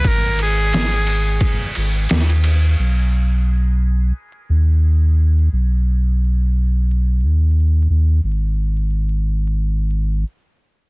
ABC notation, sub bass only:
X:1
M:4/4
L:1/8
Q:"Swing 16ths" 1/4=88
K:B
V:1 name="Sub bass" clef=bass
G,,,4 z G,,, D,,2 | B,,,4 z D,,3 | B,,,4- B,,, D,,2 D,, | G,,,6 z2 |]